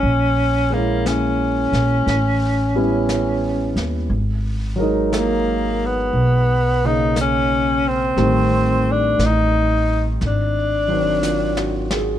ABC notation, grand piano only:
X:1
M:4/4
L:1/8
Q:"Swing" 1/4=59
K:Ablyd
V:1 name="Grand piano"
z8 | z8 | z6 (3F _G A |]
V:2 name="Grand piano"
z [A,B,_D_F]3 z [G,=B,^C=E]3 | z [_G,A,EB]4 [_D,B,]3 | [E,G,=A,C]4 z [E,_G,CD]3 |]